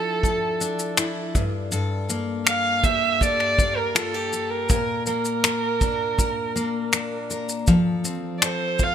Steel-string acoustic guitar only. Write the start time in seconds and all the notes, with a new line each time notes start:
Already playing: F3 D4 E4 A4
0.24 A4
0.61 D4
0.98 E4
1.35 G2
1.72 G2 A4
2.09 A#3
2.46 A4
2.85 G4
3.21 A4
3.59 A#3
3.95 F4
4.14 G4
4.33 A4
4.70 A#2 A#4
5.07 A#3
5.44 A#4
5.82 D4
6.19 A#4
6.56 A#3
6.93 D4
7.30 A#4
7.68 F3 A4
8.04 C4
8.43 A4
8.79 F4